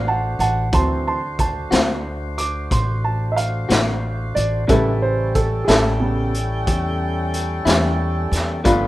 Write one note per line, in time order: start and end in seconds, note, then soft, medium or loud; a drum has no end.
0.00 0.36 A1 medium
0.00 0.69 A3 medium
0.00 0.69 D4 medium
0.00 0.69 F#4 medium
0.00 0.69 C5 medium
0.08 0.38 F#5 medium
0.08 0.39 A5 medium
0.39 0.70 A1 medium
0.39 0.71 F#5 medium
0.39 0.72 A5 medium
0.39 closed hi-hat medium
0.72 1.68 D2 medium
0.72 1.17 E3 soft
0.72 1.17 F#3 soft
0.72 4.65 A3 medium
0.72 1.17 C4 soft
0.72 4.65 D4 medium
0.72 4.65 F#4 medium
0.72 4.65 C5 medium
0.72 1.04 A5 medium
0.72 1.06 C6 medium
0.72 kick loud
0.72 closed hi-hat medium
1.07 1.37 A5 medium
1.07 1.39 C6 medium
1.39 1.72 A5 medium
1.39 kick medium
1.39 closed hi-hat medium
1.71 2.67 D2 medium
1.71 1.92 D3 medium
1.71 1.92 A3 medium
1.71 1.92 C4 medium
1.71 1.91 F#4 medium
1.71 snare loud
1.71 closed hi-hat medium
2.38 2.70 D6 medium
2.38 closed hi-hat medium
2.71 3.66 A1 medium
2.71 3.04 C6 medium
2.71 kick medium
2.71 closed hi-hat medium
3.04 3.36 A5 medium
3.32 3.36 E5 soft
3.36 4.33 F5 medium
3.36 closed hi-hat medium
3.69 4.32 A1 medium
3.69 3.90 D3 medium
3.69 3.90 A3 medium
3.69 3.90 C4 soft
3.69 3.89 F#4 medium
3.69 snare loud
3.69 closed hi-hat medium
4.35 4.67 A1 medium
4.35 4.68 D5 medium
4.35 closed hi-hat medium
4.67 5.64 A1 medium
4.67 4.88 A2 medium
4.67 5.63 C#3 soft
4.67 4.89 G3 medium
4.67 5.64 G3 soft
4.67 8.61 G3 medium
4.67 8.60 C#4 medium
4.67 8.61 C#4 medium
4.67 4.89 C#4 medium
4.67 8.61 E4 medium
4.67 4.89 E4 medium
4.67 8.60 A4 medium
4.67 8.61 A4 medium
4.67 5.01 A4 medium
4.67 5.64 B4 medium
4.67 8.60 G5 medium
4.67 kick loud
4.67 closed hi-hat medium
5.02 5.34 C5 medium
5.35 5.67 A4 medium
5.35 kick medium
5.35 closed hi-hat medium
5.65 6.63 A1 medium
5.65 5.88 E4 medium
5.65 5.68 G#4 medium
5.65 closed hi-hat medium
5.69 5.89 A2 soft
5.69 5.89 G3 medium
5.69 5.88 C#4 medium
5.69 6.32 A4 medium
5.69 snare loud
6.00 6.30 C#3 soft
6.00 6.30 G3 soft
6.00 6.31 B3 soft
6.34 closed hi-hat medium
6.67 7.62 E2 medium
6.67 kick medium
6.67 closed hi-hat medium
7.34 closed hi-hat medium
7.65 8.28 E2 medium
7.65 7.87 A2 medium
7.65 7.86 G3 medium
7.65 7.86 C#4 medium
7.65 7.85 E4 medium
7.65 snare loud
7.65 closed hi-hat medium
8.32 8.62 E2 medium
8.32 snare soft
8.32 closed hi-hat medium
8.63 8.87 G1 medium
8.63 8.87 F3 soft
8.63 8.84 G3 medium
8.63 8.87 G3 medium
8.63 8.87 A3 soft
8.63 8.87 B3 soft
8.63 8.85 D4 medium
8.63 8.87 D#4 medium
8.63 8.87 F4 medium
8.63 8.85 F4 medium
8.63 8.87 G4 medium
8.63 8.87 B4 medium
8.63 8.85 B4 medium
8.63 8.87 F5 medium
8.63 kick loud
8.63 closed hi-hat medium